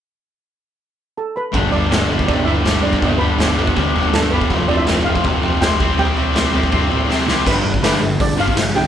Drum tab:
CC |----------------|----------------|----------------|----------------|
HH |----------------|----------------|----------------|----------------|
SD |----------------|----o-------o---|----o-------o---|----o-------o---|
FT |----------------|o-o-o-o-o-o-o-o-|o-o-o-o-o-o-o-o-|o-o-o-o-o-o-o-o-|
BD |----------------|o------oo------o|o------oo------o|o------oo-----o-|

CC |----------------|x---------------|
HH |----------------|----o---o---o---|
SD |----o-------o-o-|----o-------o---|
FT |o-o-o-o-o-o-----|----------------|
BD |-------oo-------|o--o----o--o----|